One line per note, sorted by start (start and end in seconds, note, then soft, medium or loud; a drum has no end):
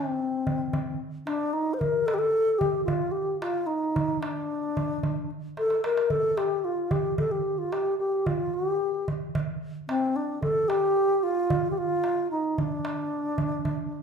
0.00 1.00 C4 medium
0.34 darbuka ka soft
0.47 darbuka dum medium
0.73 darbuka dum medium
1.26 1.55 D4 medium
1.26 darbuka tek medium
1.41 darbuka ka soft
1.53 1.75 D#4 medium
1.74 1.81 C5 medium
1.79 2.08 A#4 medium
1.79 darbuka dum medium
2.06 2.15 A4 loud
2.06 darbuka tek medium
2.14 2.20 G4 medium
2.19 2.60 A4 loud
2.48 darbuka ka soft
2.58 2.84 G4 medium
2.58 darbuka dum medium
2.85 3.13 F4 medium
2.85 darbuka dum medium
3.11 3.39 G4 medium
3.40 3.68 F4 medium
3.40 darbuka tek medium
3.56 darbuka ka soft
3.66 4.22 D#4 medium
3.66 darbuka ka soft
3.96 darbuka dum medium
4.21 5.29 D4 medium
4.21 darbuka tek medium
4.36 darbuka ka soft
4.64 darbuka ka soft
4.77 darbuka dum medium
5.03 darbuka dum medium
5.31 darbuka ka soft
5.57 5.83 A4 medium
5.57 darbuka tek soft
5.70 darbuka ka medium
5.84 6.12 A#4 medium
5.84 darbuka tek medium
5.97 darbuka ka medium
6.10 6.39 A4 loud
6.10 darbuka dum medium
6.37 6.66 G4 medium
6.37 darbuka tek medium
6.65 6.93 F4 medium
6.78 darbuka ka soft
6.91 7.18 G4 medium
6.91 darbuka dum medium
7.18 7.33 A4 medium
7.18 darbuka dum medium
7.31 7.60 G4 medium
7.58 7.74 F4 medium
7.72 7.98 G4 medium
7.72 darbuka tek medium
7.86 darbuka ka soft
7.99 8.28 G4 medium
7.99 darbuka ka soft
8.26 8.56 F4 medium
8.26 darbuka dum medium
8.54 9.08 G4 medium
8.95 darbuka ka soft
9.08 darbuka dum medium
9.35 darbuka dum medium
9.88 10.17 C4 medium
9.88 darbuka tek medium
10.03 darbuka ka soft
10.16 10.42 D4 medium
10.16 darbuka ka soft
10.42 10.70 A4 loud
10.42 darbuka dum medium
10.68 11.25 G4 loud
10.68 darbuka tek medium
11.11 darbuka ka soft
11.23 11.70 F4 medium
11.50 darbuka dum medium
11.71 11.79 G4 medium
11.78 12.30 F4 loud
12.04 darbuka tek medium
12.18 darbuka ka soft
12.31 12.60 D#4 medium
12.31 darbuka ka soft
12.58 14.03 D4 medium
12.58 darbuka dum medium
12.85 darbuka tek medium
12.98 darbuka ka soft
13.12 darbuka ka soft
13.25 darbuka ka soft
13.38 darbuka dum medium
13.65 darbuka dum medium
13.92 darbuka ka soft